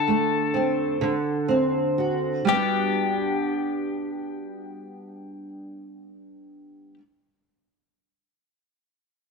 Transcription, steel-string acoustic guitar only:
Already playing: D3
0.08 A3
0.54 C4
1.01 D3
1.48 C4
1.98 F#4
2.45 G3
2.49 B3 D4

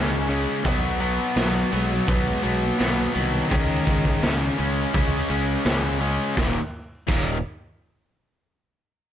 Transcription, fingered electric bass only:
Already playing: C#2
0.65 B1
1.36 B1
1.73 B1
2.08 B1
2.44 B1
2.80 B1
3.15 C2
3.52 C#2
3.87 C#2
4.23 C#2
4.59 C#2
4.95 C#2
5.30 C#2
5.65 C#2
6.37 D#1
7.08 D#1

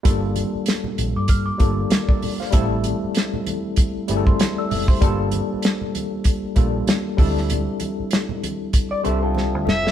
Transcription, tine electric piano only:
0.03 G3 A#3 D4 F4 A4
1.58 G3 A#3 D4 F4 A4
1.91 F4 A#4
2.08 A4 D5
2.40 C5 F5
2.51 G3 A3 C4 E4 A4
4.08 G3 A3 C4 E4 G#4
4.17 A4
4.58 A4 D5
4.71 A4 E5
4.90 G4 C5
5.01 G3 A#3 D4 F4 A4
6.55 G3 A#3 D4 F4 A4
7.17 G3 C4 D4 E4 A4
9.04 G3 C4 D4 A4 E5
9.35 G4 C5
9.65 A4 E5
9.84 A4 D5

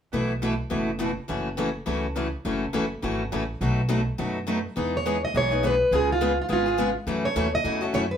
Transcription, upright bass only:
0.13 B1
0.71 F#1
1.29 F#1
1.87 C#2
2.45 F#1
2.74 F#1
3.03 G#1
3.32 A1
3.61 B1
4.19 F#2
4.77 E2
5.34 B1
5.91 C#2
6.49 G#1
7.07 F#2
7.36 D#2
7.64 E2
7.93 F#2

